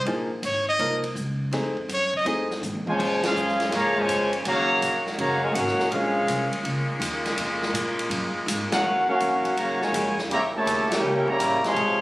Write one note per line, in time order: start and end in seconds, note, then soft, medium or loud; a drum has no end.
0.05 0.41 A#1 loud
0.05 0.28 F3 medium
0.05 0.28 A#3 medium
0.05 0.28 D#4 medium
0.05 0.29 G#4 medium
0.05 ride medium
0.42 0.78 G#1 medium
0.42 0.67 C#5 loud
0.42 hi-hat pedal medium
0.42 ride medium
0.69 1.02 D#5 loud
0.79 1.15 C2 medium
0.79 1.01 F3 medium
0.79 1.01 A#3 medium
0.79 1.01 D#4 medium
0.79 1.01 A#4 medium
0.79 snare soft
0.79 ride medium
1.04 kick soft
1.04 ride medium
1.15 1.51 C#2 loud
1.15 hi-hat pedal medium
1.51 1.87 F2 loud
1.51 1.75 A3 medium
1.51 1.75 C4 medium
1.51 1.75 D#4 medium
1.51 1.75 G#4 medium
1.51 snare soft
1.51 ride medium
1.77 kick medium
1.88 2.24 F#2 loud
1.88 hi-hat pedal soft
1.88 ride medium
1.94 2.14 C#5 loud
2.14 2.49 D#5 medium
2.14 kick medium
2.25 2.61 F2 medium
2.25 2.48 A3 medium
2.25 2.48 C4 medium
2.25 2.48 D#4 medium
2.25 2.48 G#4 medium
2.25 ride medium
2.51 snare soft
2.62 2.84 G#2 loud
2.62 hi-hat pedal medium
2.62 high tom medium
2.75 high tom medium
2.87 3.21 C#3 medium
2.87 3.21 F3 medium
2.87 3.21 G#3 medium
2.87 3.22 F4 medium
2.87 3.22 C5 medium
2.87 3.22 C#5 medium
2.87 3.22 G#5 loud
2.87 muted upright bass stroke soft
2.87 high tom medium
2.99 3.34 A#2 loud
2.99 4.44 C#3 medium
2.99 4.44 G#3 medium
2.99 4.44 A#3 medium
2.99 4.44 C#4 medium
2.99 kick medium
2.99 crash medium
3.23 3.69 G#3 medium
3.23 3.70 C#4 medium
3.23 3.71 C#4 medium
3.23 3.69 F4 medium
3.23 3.70 G#4 medium
3.23 3.71 C5 medium
3.23 3.70 F5 loud
3.23 snare medium
3.23 ride medium
3.35 3.71 F#2 loud
3.35 hi-hat pedal medium
3.48 snare soft
3.60 snare medium
3.60 ride medium
3.72 4.07 G#2 medium
3.72 3.95 C#3 medium
3.72 3.95 F3 medium
3.72 3.96 A#3 medium
3.72 3.97 G#4 loud
3.72 3.97 C#5 medium
3.72 3.97 F5 loud
3.72 3.98 A#5 loud
3.72 snare soft
3.72 ride medium
3.96 4.33 C#3 loud
3.96 4.33 F3 loud
3.96 4.33 G#3 medium
3.96 4.34 F4 medium
3.96 4.34 C5 medium
3.96 4.34 C#5 medium
3.96 4.34 G#5 loud
3.96 kick medium
4.08 4.44 F2 loud
4.08 hi-hat pedal medium
4.08 ride medium
4.33 ride medium
4.45 4.81 D#2 loud
4.45 8.80 C#3 medium
4.45 5.03 C#3 medium
4.45 5.90 D#3 medium
4.45 5.90 F#3 medium
4.45 5.02 F#3 loud
4.45 5.02 A#3 medium
4.45 5.90 F#4 medium
4.45 5.03 F#4 loud
4.45 5.03 C#5 loud
4.45 5.03 F5 loud
4.45 5.03 A#5 loud
4.45 ride medium
4.81 5.17 A#1 medium
4.81 hi-hat pedal medium
4.81 ride medium
5.07 snare soft
5.18 5.54 F#1 loud
5.18 5.40 C#3 medium
5.18 5.40 F#3 medium
5.18 5.41 A#3 medium
5.18 5.41 F#4 medium
5.18 5.41 C#5 medium
5.18 5.42 F5 medium
5.18 5.41 A#5 loud
5.18 ride medium
5.42 5.53 G#3 medium
5.42 5.55 F4 medium
5.42 5.53 A#4 medium
5.42 5.54 C#5 medium
5.42 5.55 G#5 medium
5.53 5.77 G#1 loud
5.53 5.90 A#3 medium
5.53 5.89 C#4 medium
5.53 5.91 F#4 medium
5.53 5.91 A#4 medium
5.53 5.90 F5 medium
5.53 5.91 F#5 loud
5.53 hi-hat pedal medium
5.53 ride medium
5.68 snare soft
5.78 muted upright bass stroke soft
5.78 snare medium
5.90 6.26 A#1 loud
5.90 8.81 A#2 medium
5.90 6.60 G#3 medium
5.90 8.81 G#3 medium
5.90 8.81 A#3 medium
5.90 6.60 C#4 medium
5.90 6.60 F4 medium
5.90 6.61 G#4 medium
5.90 6.60 C5 medium
5.90 6.60 F5 loud
5.90 ride medium
6.27 6.50 C2 loud
6.27 hi-hat pedal medium
6.27 ride medium
6.52 muted upright bass stroke soft
6.52 ride medium
6.63 6.86 C#2 loud
6.63 ride medium
6.88 muted upright bass stroke soft
7.00 7.36 D#2 loud
7.00 hi-hat pedal medium
7.00 ride medium
7.25 snare soft
7.25 ride medium
7.37 7.72 F2 loud
7.37 ride medium
7.63 snare soft
7.73 8.09 A#2 loud
7.73 hi-hat pedal medium
7.73 ride medium
7.99 ride medium
8.09 8.32 F#2 loud
8.09 ride medium
8.34 muted upright bass stroke soft
8.46 8.69 G#2 loud
8.46 hi-hat pedal medium
8.46 ride medium
8.72 9.06 A#3 medium
8.72 9.06 C#4 medium
8.72 9.06 F#4 medium
8.72 9.06 A#4 medium
8.72 9.06 F5 medium
8.72 9.06 F#5 loud
8.72 snare loud
8.72 ride medium
8.82 9.06 D#2 loud
8.82 10.13 D#3 medium
8.82 10.13 F#3 medium
8.82 10.13 C#4 medium
8.82 10.13 F#4 medium
9.07 9.54 A#3 medium
9.07 9.54 C#4 medium
9.07 9.54 F#4 medium
9.07 9.54 A#4 medium
9.07 9.54 F5 medium
9.07 muted upright bass stroke soft
9.20 9.43 F2 loud
9.20 hi-hat pedal medium
9.20 ride medium
9.45 muted upright bass stroke soft
9.45 ride medium
9.56 9.79 F#2 medium
9.56 9.82 C#3 medium
9.56 9.82 F#3 medium
9.56 9.82 A#3 medium
9.56 9.82 F#4 medium
9.56 9.82 C#5 medium
9.56 9.82 F5 medium
9.56 9.82 A#5 loud
9.56 ride medium
9.80 10.18 A#2 medium
9.80 10.18 C#3 medium
9.80 10.18 G#3 medium
9.80 10.19 F#4 medium
9.80 10.19 C#5 medium
9.80 10.19 F5 medium
9.80 10.19 G#5 loud
9.80 muted upright bass stroke soft
9.80 snare soft
9.92 10.15 F2 loud
9.92 hi-hat pedal medium
9.92 ride medium
10.16 muted upright bass stroke soft
10.16 snare medium
10.28 10.64 E2 loud
10.28 12.01 A#2 medium
10.28 10.41 C#3 medium
10.28 11.75 C#3 medium
10.28 10.41 G3 medium
10.28 11.75 G3 medium
10.28 10.41 A#3 medium
10.28 11.75 E4 medium
10.28 ride medium
10.32 10.42 G4 medium
10.32 10.43 C#5 medium
10.32 10.42 E5 medium
10.32 10.43 A#5 loud
10.55 10.89 A#2 loud
10.55 10.89 C#3 loud
10.55 10.89 A3 medium
10.55 10.90 G4 medium
10.55 10.90 C#5 medium
10.55 10.90 E5 medium
10.55 10.90 A5 medium
10.66 11.01 D#2 loud
10.66 hi-hat pedal medium
10.66 ride medium
10.91 11.27 A#3 loud
10.91 11.27 C#4 medium
10.91 11.29 E4 medium
10.91 11.28 G4 medium
10.91 11.28 C#5 medium
10.91 11.29 G5 loud
10.91 snare loud
10.91 ride medium
10.95 11.30 A#4 medium
11.02 11.25 C#2 loud
11.28 11.64 C#3 loud
11.28 11.65 G3 loud
11.28 11.64 A#3 loud
11.28 11.65 G4 medium
11.28 11.65 C#5 medium
11.28 11.65 E5 medium
11.28 11.65 A#5 loud
11.28 kick medium
11.39 11.62 A1 loud
11.39 hi-hat pedal medium
11.39 ride medium
11.63 12.01 C3 loud
11.63 12.01 F3 medium
11.63 12.01 G#3 medium
11.63 12.01 C#5 loud
11.63 muted upright bass stroke soft
11.63 snare medium
11.63 ride medium
11.67 12.01 G#4 loud
11.67 12.01 F5 loud
11.67 12.01 C6 loud
11.75 12.01 A#1 loud
11.75 12.01 G#3 medium
11.75 12.01 A#3 medium
11.75 ride medium